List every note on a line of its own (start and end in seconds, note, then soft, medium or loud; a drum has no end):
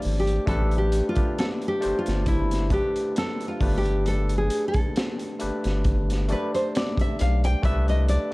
0.00 0.46 A3 medium
0.00 0.47 D4 medium
0.00 0.48 G4 medium
0.00 1.83 C5 medium
0.00 3.63 D5 medium
0.00 open hi-hat medium
0.06 0.39 G#1 medium
0.20 0.46 G4 medium
0.27 closed hi-hat soft
0.46 1.02 A1 loud
0.46 1.07 A3 medium
0.46 1.08 D4 medium
0.46 1.08 G4 medium
0.46 0.77 A4 loud
0.46 1.09 B4 medium
0.46 kick loud
0.46 closed hi-hat medium
0.71 closed hi-hat soft
0.78 1.05 G4 medium
0.92 closed hi-hat medium
1.09 1.39 F4 medium
1.15 1.74 A3 medium
1.15 1.75 D4 medium
1.15 1.75 G4 medium
1.15 1.75 B4 medium
1.15 kick medium
1.15 closed hi-hat soft
1.39 1.46 A4 loud
1.39 snare loud
1.39 closed hi-hat medium
1.62 closed hi-hat soft
1.68 1.98 G4 medium
1.80 2.61 A3 medium
1.80 2.62 D4 medium
1.80 2.62 G4 medium
1.80 2.63 C5 medium
1.80 closed hi-hat medium
1.85 1.94 G1 soft
1.99 2.28 F4 medium
2.06 2.77 G1 medium
2.06 snare soft
2.06 closed hi-hat soft
2.26 2.69 E4 medium
2.26 kick medium
2.26 closed hi-hat medium
2.51 snare soft
2.51 closed hi-hat medium
2.70 3.51 A3 medium
2.70 3.51 D4 medium
2.70 3.52 G4 medium
2.70 3.14 G4 medium
2.70 3.52 B4 medium
2.70 kick medium
2.70 closed hi-hat medium
2.96 closed hi-hat medium
3.16 3.45 A4 medium
3.16 snare loud
3.16 closed hi-hat medium
3.41 closed hi-hat soft
3.48 3.75 F4 medium
3.60 4.50 G1 loud
3.60 5.21 A3 medium
3.60 5.21 D4 medium
3.60 5.22 G4 medium
3.60 5.22 B4 medium
3.60 kick loud
3.60 open hi-hat medium
3.78 4.07 G4 medium
3.86 closed hi-hat soft
4.06 4.37 A4 loud
4.06 closed hi-hat medium
4.29 closed hi-hat soft
4.38 4.67 G#4 medium
4.50 closed hi-hat medium
4.68 5.52 A4 medium
4.74 kick medium
4.74 closed hi-hat soft
4.96 snare loud
4.96 closed hi-hat medium
5.19 closed hi-hat soft
5.39 5.51 G1 soft
5.39 6.20 A3 medium
5.39 6.20 D4 medium
5.39 6.21 G4 medium
5.39 6.21 B4 medium
5.39 closed hi-hat medium
5.64 6.35 G1 medium
5.64 snare soft
5.64 closed hi-hat medium
5.84 kick medium
5.84 closed hi-hat medium
6.10 snare soft
6.10 closed hi-hat medium
6.28 7.49 A3 medium
6.28 7.50 D4 medium
6.28 7.50 G4 medium
6.28 6.54 B4 medium
6.28 7.51 D5 medium
6.28 closed hi-hat medium
6.55 6.75 C5 medium
6.55 closed hi-hat medium
6.75 6.97 D5 medium
6.75 snare loud
6.75 closed hi-hat medium
6.97 7.19 E5 loud
6.97 kick loud
6.97 closed hi-hat medium
7.19 7.55 B1 loud
7.19 7.44 F5 medium
7.19 closed hi-hat medium
7.44 7.65 G5 loud
7.44 closed hi-hat soft
7.62 8.18 C2 loud
7.62 8.24 A3 medium
7.62 8.24 D4 medium
7.62 8.25 G4 medium
7.62 8.25 B4 loud
7.62 7.86 E5 loud
7.62 kick loud
7.62 closed hi-hat medium
7.88 8.08 D#5 medium
7.88 closed hi-hat soft
8.09 8.33 D5 medium
8.09 closed hi-hat medium